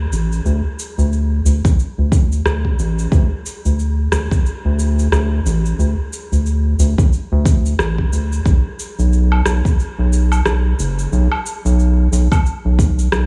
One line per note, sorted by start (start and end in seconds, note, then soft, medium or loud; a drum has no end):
0.12 0.40 A1 medium
0.12 cabasa medium
0.32 cabasa soft
0.45 0.61 D2 medium
0.45 cabasa soft
0.79 cabasa medium
0.98 1.41 D2 medium
0.98 cabasa soft
1.13 cabasa soft
1.45 1.61 D2 medium
1.45 cabasa medium
1.65 kick loud
1.65 cabasa soft
1.79 cabasa soft
1.98 2.41 D2 loud
2.12 kick loud
2.12 cabasa medium
2.32 cabasa soft
2.45 2.73 D2 medium
2.45 cross-stick medium
2.45 cabasa soft
2.65 kick medium
2.79 3.07 A1 medium
2.79 cabasa medium
2.99 cabasa soft
3.12 3.28 D2 loud
3.12 kick loud
3.12 cabasa soft
3.46 cabasa medium
3.65 4.08 D2 medium
3.65 cabasa soft
3.79 cabasa soft
4.12 4.28 D2 medium
4.12 cross-stick medium
4.12 cabasa medium
4.31 kick loud
4.31 cabasa soft
4.46 cabasa soft
4.65 5.08 D2 loud
4.79 cabasa medium
4.99 cabasa soft
5.12 5.40 D2 medium
5.12 cross-stick medium
5.12 cabasa soft
5.46 5.74 A1 medium
5.46 cabasa medium
5.66 cabasa soft
5.79 5.95 D2 medium
5.79 cabasa soft
6.13 cabasa medium
6.32 6.75 D2 medium
6.32 cabasa soft
6.46 cabasa soft
6.79 6.95 D2 medium
6.79 cabasa medium
6.98 kick loud
6.98 cabasa soft
7.13 cabasa soft
7.32 7.75 D2 loud
7.45 kick loud
7.45 cabasa medium
7.66 cabasa soft
7.79 8.07 A1 medium
7.79 cross-stick medium
7.79 cabasa soft
7.98 kick medium
8.12 8.40 D2 medium
8.12 cabasa medium
8.32 cabasa soft
8.46 8.61 B1 loud
8.46 kick loud
8.46 cabasa soft
8.80 cabasa medium
8.99 9.41 B1 medium
8.99 cabasa soft
9.13 cabasa soft
9.32 low woodblock medium
9.46 9.61 B1 medium
9.46 cross-stick medium
9.46 cabasa medium
9.65 kick loud
9.65 cabasa soft
9.80 cabasa soft
9.98 10.41 B1 loud
10.13 cabasa medium
10.32 cabasa soft
10.32 low woodblock medium
10.46 10.74 B1 medium
10.46 cross-stick medium
10.46 cabasa soft
10.79 11.07 F#1 medium
10.79 cabasa medium
10.99 cabasa soft
11.12 11.28 B1 loud
11.12 cabasa soft
11.32 low woodblock medium
11.46 cabasa medium
11.65 12.08 B1 medium
11.65 cabasa soft
11.79 cabasa soft
12.12 12.28 B1 medium
12.12 cabasa medium
12.32 kick medium
12.32 cabasa soft
12.32 low woodblock medium
12.46 cabasa soft
12.65 13.08 B1 loud
12.79 kick loud
12.79 cabasa medium
12.99 cabasa soft
13.12 13.26 B1 medium
13.12 cross-stick medium
13.12 cabasa soft